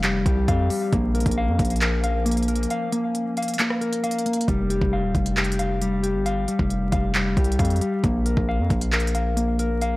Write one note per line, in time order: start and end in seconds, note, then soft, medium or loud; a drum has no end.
0.00 0.24 F1 loud
0.00 0.89 F3 medium
0.00 0.89 G3 medium
0.00 0.89 C4 medium
0.00 0.25 G4 medium
0.00 0.47 F5 loud
0.00 clap loud
0.00 closed hi-hat medium
0.04 0.69 G3 medium
0.26 0.47 C2 loud
0.26 0.93 G4 medium
0.26 kick loud
0.26 closed hi-hat medium
0.48 0.69 F2 loud
0.48 0.93 F5 loud
0.48 kick medium
0.48 closed hi-hat medium
0.70 0.92 G3 medium
0.70 open hi-hat medium
0.93 1.25 A#1 loud
0.93 4.45 F3 medium
0.93 4.45 A#3 medium
0.93 2.24 A#3 loud
0.93 4.45 C#4 medium
0.93 kick loud
0.93 closed hi-hat medium
1.15 1.81 A#4 medium
1.15 closed hi-hat medium
1.20 closed hi-hat medium
1.26 1.50 A#1 loud
1.26 kick loud
1.26 closed hi-hat medium
1.31 closed hi-hat medium
1.38 2.02 F5 loud
1.48 1.59 F2 loud
1.59 2.66 A#1 loud
1.59 kick loud
1.59 closed hi-hat medium
1.65 closed hi-hat medium
1.70 closed hi-hat medium
1.76 closed hi-hat medium
1.81 2.47 A#4 medium
1.81 clap loud
1.81 closed hi-hat medium
2.04 2.69 F5 medium
2.04 closed hi-hat medium
2.25 2.91 A#3 medium
2.25 closed hi-hat medium
2.31 closed hi-hat medium
2.37 closed hi-hat medium
2.43 closed hi-hat soft
2.48 3.80 A#4 medium
2.48 closed hi-hat medium
2.55 closed hi-hat medium
2.63 closed hi-hat medium
2.70 3.36 F5 loud
2.70 closed hi-hat medium
2.92 3.58 A#3 medium
2.92 closed hi-hat medium
3.15 closed hi-hat medium
3.37 4.02 F5 medium
3.37 closed hi-hat medium
3.43 closed hi-hat medium
3.48 closed hi-hat medium
3.54 closed hi-hat medium
3.59 4.25 A#3 medium
3.59 clap loud
3.59 closed hi-hat medium
3.70 cross-stick medium
3.81 4.48 A#4 medium
3.81 closed hi-hat soft
3.93 closed hi-hat medium
4.04 4.48 F5 loud
4.04 closed hi-hat medium
4.11 closed hi-hat medium
4.18 closed hi-hat medium
4.26 4.48 A#3 medium
4.26 closed hi-hat medium
4.33 closed hi-hat medium
4.41 closed hi-hat medium
4.48 4.80 F1 loud
4.48 5.80 G3 medium
4.48 kick loud
4.48 closed hi-hat medium
4.70 5.36 G4 medium
4.70 closed hi-hat medium
4.81 5.05 F1 loud
4.81 kick loud
4.93 5.58 F5 loud
5.04 5.14 D#1 loud
5.15 6.16 F1 loud
5.15 kick loud
5.15 closed hi-hat medium
5.26 closed hi-hat medium
5.37 6.02 G4 medium
5.37 clap loud
5.37 closed hi-hat soft
5.44 closed hi-hat medium
5.52 closed hi-hat medium
5.59 6.25 F5 medium
5.59 closed hi-hat medium
5.82 6.47 G3 medium
5.82 closed hi-hat medium
6.03 7.36 G4 medium
6.03 closed hi-hat medium
6.15 6.46 G1 loud
6.26 6.91 F5 loud
6.26 closed hi-hat medium
6.48 7.14 G3 medium
6.48 closed hi-hat medium
6.59 6.91 F1 loud
6.59 kick medium
6.70 closed hi-hat medium
6.92 7.35 F1 loud
6.92 7.58 F5 medium
6.92 kick loud
6.92 closed hi-hat medium
7.15 7.80 G3 medium
7.15 clap loud
7.15 closed hi-hat medium
7.37 7.58 C2 loud
7.37 8.04 G4 medium
7.37 kick medium
7.37 closed hi-hat soft
7.44 closed hi-hat medium
7.52 closed hi-hat medium
7.59 7.81 F2 loud
7.59 8.04 F5 medium
7.59 kick medium
7.59 closed hi-hat medium
7.65 closed hi-hat medium
7.70 closed hi-hat medium
7.76 closed hi-hat soft
7.81 8.03 G3 medium
7.81 closed hi-hat medium
8.04 8.36 A#1 loud
8.04 9.35 A#3 loud
8.04 kick loud
8.04 closed hi-hat medium
8.26 8.92 A#4 medium
8.26 closed hi-hat medium
8.37 8.61 A#1 loud
8.37 kick medium
8.49 9.14 F5 loud
8.59 8.70 F2 loud
8.70 9.97 A#1 loud
8.70 kick loud
8.70 closed hi-hat medium
8.81 closed hi-hat medium
8.93 9.58 A#4 medium
8.93 clap loud
8.93 closed hi-hat soft
9.00 closed hi-hat medium
9.07 closed hi-hat medium
9.15 9.81 F5 medium
9.15 closed hi-hat medium
9.37 9.97 A#3 medium
9.37 closed hi-hat medium
9.59 9.97 A#4 medium
9.59 closed hi-hat medium
9.81 9.97 F5 loud
9.81 closed hi-hat medium